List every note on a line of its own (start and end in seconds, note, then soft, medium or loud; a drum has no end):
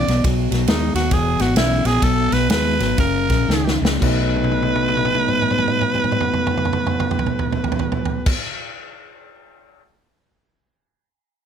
0.00 0.24 D5 medium
0.08 0.23 B1 medium
0.08 0.23 E2 medium
0.08 0.23 B2 medium
0.08 snare soft
0.08 ride medium
0.24 0.50 B1 medium
0.24 0.49 B2 medium
0.24 0.49 F#3 medium
0.24 kick loud
0.24 snare soft
0.24 ride medium
0.51 0.66 B1 medium
0.51 0.66 B2 medium
0.51 0.66 F#3 medium
0.51 snare soft
0.51 ride medium
0.67 0.94 D#2 medium
0.67 0.92 B2 medium
0.67 0.93 G#3 loud
0.67 0.94 D#4 medium
0.67 snare loud
0.67 ride medium
0.94 1.10 D#2 medium
0.94 1.10 B2 medium
0.94 1.10 F#3 medium
0.94 1.14 F#4 medium
0.94 snare soft
0.94 ride medium
1.11 1.38 E1 medium
1.11 1.37 E2 medium
1.11 1.37 B2 loud
1.11 1.42 G#4 medium
1.11 kick loud
1.11 snare soft
1.11 ride medium
1.39 1.55 G#1 medium
1.39 1.55 E2 medium
1.39 1.55 B2 medium
1.39 1.56 F#4 medium
1.39 snare soft
1.39 ride medium
1.56 1.84 B1 medium
1.56 1.82 E2 loud
1.56 1.82 C#3 loud
1.56 1.88 E4 medium
1.56 snare loud
1.56 ride medium
1.84 2.01 A#1 medium
1.84 2.00 E2 medium
1.84 2.01 B2 medium
1.84 2.05 G#4 loud
1.84 snare soft
1.84 ride medium
2.02 2.31 B1 medium
2.02 2.29 B2 medium
2.02 2.29 F#3 loud
2.02 2.34 A4 loud
2.02 kick loud
2.02 snare soft
2.02 ride medium
2.31 2.49 B1 medium
2.31 2.47 B2 medium
2.31 2.48 F#3 medium
2.31 2.50 B4 loud
2.31 snare soft
2.31 ride medium
2.49 2.79 D#2 medium
2.49 2.77 B2 medium
2.49 2.77 G#3 loud
2.49 2.95 B4 loud
2.49 snare loud
2.49 ride medium
2.80 2.97 G#1 medium
2.80 2.96 B2 medium
2.80 2.97 F#3 medium
2.80 snare soft
2.80 ride medium
2.98 3.29 F#1 medium
2.98 3.27 F#2 medium
2.98 3.27 C#3 loud
2.98 3.79 A#4 medium
2.98 kick loud
2.98 snare soft
2.98 ride medium
3.30 3.48 A#1 medium
3.30 3.47 F#2 medium
3.30 3.47 C#3 medium
3.30 kick medium
3.30 snare soft
3.30 ride medium
3.48 3.81 C#2 medium
3.48 3.78 F#2 medium
3.48 3.79 D#3 medium
3.48 snare medium
3.68 snare medium
3.81 4.01 C#2 medium
3.81 4.00 F#2 medium
3.81 3.99 C#3 medium
3.81 snare loud
4.00 8.30 B1 medium
4.00 8.33 B2 medium
4.00 8.34 F#3 medium
4.00 8.34 A3 medium
4.00 8.30 B4 medium
4.00 kick medium
4.00 crash medium
4.04 8.35 D#4 medium
4.36 high tom soft
4.44 high tom soft
4.52 high tom soft
4.63 high tom medium
4.76 high tom soft
4.89 high tom soft
4.97 high tom medium
5.05 high tom medium
5.15 high tom medium
5.28 mid tom medium
5.42 mid tom medium
5.51 mid tom medium
5.58 mid tom medium
5.68 mid tom medium
5.81 mid tom medium
5.95 mid tom medium
6.04 mid tom medium
6.12 mid tom medium
6.21 mid tom medium
6.34 mid tom medium
6.47 mid tom medium
6.58 mid tom medium
6.65 mid tom medium
6.73 mid tom medium
6.87 mid tom medium
7.00 mid tom medium
7.11 mid tom medium
7.19 floor tom medium
7.26 floor tom medium
7.39 floor tom medium
7.53 floor tom medium
7.64 floor tom medium
7.72 floor tom medium
7.79 floor tom medium
7.92 floor tom medium
8.05 floor tom medium
8.26 kick loud
8.26 crash medium